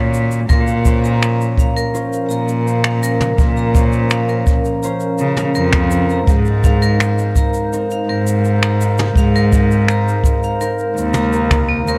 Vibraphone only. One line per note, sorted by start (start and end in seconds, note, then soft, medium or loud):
0.49 0.60 A#4 loud
1.04 1.21 A#5 medium
1.59 1.76 F5 medium
1.76 1.87 A#4 medium
2.29 2.47 A#5 medium
2.85 3.02 F5 medium
3.03 3.13 A#4 medium
3.57 3.74 A#5 medium
4.11 4.28 F5 medium
4.29 4.40 A#4 medium
4.83 5.00 A#5 medium
5.38 5.55 F5 medium
5.55 5.66 A#4 medium
6.12 6.28 A#5 medium
6.65 6.82 F5 medium
6.82 6.93 A#4 loud
7.37 7.54 A#5 medium
7.92 8.08 F5 medium
8.09 8.19 A#4 medium
8.63 8.80 A#5 medium
9.18 9.35 F5 medium
9.36 9.46 A#4 loud
9.90 10.07 A#5 medium
10.44 10.61 F5 medium
10.61 10.72 A#4 medium
11.15 11.26 A#5 medium
11.69 11.87 A#3 loud
11.88 11.98 A#4 medium